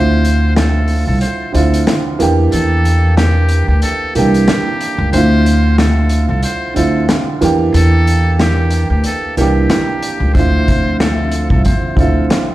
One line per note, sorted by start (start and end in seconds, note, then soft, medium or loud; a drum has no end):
0.00 1.03 D2 loud
0.00 1.08 D3 medium
0.00 1.09 C4 medium
0.00 1.09 E4 medium
0.00 1.10 F4 medium
0.00 0.52 C5 loud
0.25 closed hi-hat medium
0.56 1.04 A4 medium
0.56 snare loud
0.56 snare medium
0.56 closed hi-hat medium
0.88 open hi-hat medium
1.07 1.20 C2 medium
1.07 1.20 A4 medium
1.21 1.51 C5 medium
1.21 closed hi-hat medium
1.52 1.83 D2 medium
1.52 2.19 D3 medium
1.52 2.19 C4 medium
1.52 2.20 E4 medium
1.52 2.20 F4 medium
1.52 1.84 A4 medium
1.52 closed hi-hat medium
1.74 closed hi-hat medium
1.87 snare loud
1.87 closed hi-hat medium
2.19 2.49 E2 medium
2.19 3.36 E3 loud
2.19 3.37 A#3 medium
2.19 3.37 D4 medium
2.19 3.38 G4 loud
2.19 closed hi-hat medium
2.52 3.64 E2 loud
2.52 3.14 A4 loud
2.52 closed hi-hat medium
2.85 closed hi-hat medium
3.17 3.64 G4 medium
3.17 snare loud
3.17 closed hi-hat medium
3.49 closed hi-hat medium
3.68 3.81 D2 medium
3.68 3.82 G4 medium
3.82 4.12 A4 loud
3.82 closed hi-hat medium
4.15 4.44 C2 medium
4.15 5.03 E3 medium
4.15 5.04 A#3 medium
4.15 5.04 D4 medium
4.15 5.09 G4 medium
4.15 5.05 G4 medium
4.15 closed hi-hat medium
4.34 closed hi-hat medium
4.48 snare loud
4.48 closed hi-hat medium
4.81 closed hi-hat medium
4.98 5.12 C#2 loud
5.12 6.25 D2 loud
5.12 6.30 D3 medium
5.12 6.31 C4 medium
5.12 6.31 E4 medium
5.12 6.32 F4 medium
5.12 5.74 C5 loud
5.12 closed hi-hat medium
5.46 closed hi-hat medium
5.78 6.26 A4 medium
5.78 snare loud
5.78 snare medium
5.78 closed hi-hat medium
6.09 closed hi-hat medium
6.28 6.42 C2 medium
6.28 6.42 A4 medium
6.43 6.73 C5 medium
6.43 closed hi-hat medium
6.74 7.05 D2 medium
6.74 7.40 D3 medium
6.74 7.41 C4 medium
6.74 7.42 E4 medium
6.74 7.42 F4 medium
6.74 7.06 A4 medium
6.74 closed hi-hat medium
7.09 snare loud
7.09 closed hi-hat medium
7.41 7.70 E2 loud
7.41 8.58 E3 loud
7.41 8.59 A#3 medium
7.41 8.59 D4 medium
7.41 8.60 G4 loud
7.41 closed hi-hat medium
7.74 8.86 E2 loud
7.74 8.36 A4 loud
7.74 closed hi-hat medium
8.07 closed hi-hat medium
8.39 8.87 G4 medium
8.39 snare loud
8.39 snare medium
8.39 closed hi-hat medium
8.71 closed hi-hat medium
8.90 9.03 D2 medium
8.90 9.03 G4 medium
9.04 9.35 A4 medium
9.04 closed hi-hat medium
9.37 9.66 C2 medium
9.37 10.25 E3 medium
9.37 10.25 A#3 medium
9.37 10.26 D4 medium
9.37 10.31 G4 medium
9.37 10.27 G4 medium
9.37 snare soft
9.37 closed hi-hat medium
9.70 snare loud
9.70 closed hi-hat medium
10.03 closed hi-hat medium
10.20 10.33 C#2 medium
10.34 11.47 D2 loud
10.34 11.52 D3 medium
10.34 12.55 D3 medium
10.34 12.55 F3 medium
10.34 12.55 C4 medium
10.34 11.52 C4 medium
10.34 11.53 E4 medium
10.34 11.53 F4 medium
10.34 10.96 C5 loud
10.34 12.55 E5 medium
10.34 kick loud
10.34 closed hi-hat medium
10.68 kick medium
10.68 closed hi-hat medium
11.00 11.47 A4 medium
11.00 finger snap medium
11.00 snare loud
11.00 snare medium
11.00 closed hi-hat medium
11.31 closed hi-hat medium
11.50 11.64 C2 medium
11.50 11.64 A4 medium
11.50 kick loud
11.65 11.94 C5 medium
11.65 kick medium
11.65 closed hi-hat medium
11.96 12.26 D2 medium
11.96 12.55 D3 medium
11.96 12.55 C4 medium
11.96 12.55 E4 medium
11.96 12.55 F4 medium
11.96 12.27 A4 medium
11.96 kick medium
11.96 closed hi-hat medium
12.30 finger snap medium
12.30 snare loud
12.30 closed hi-hat medium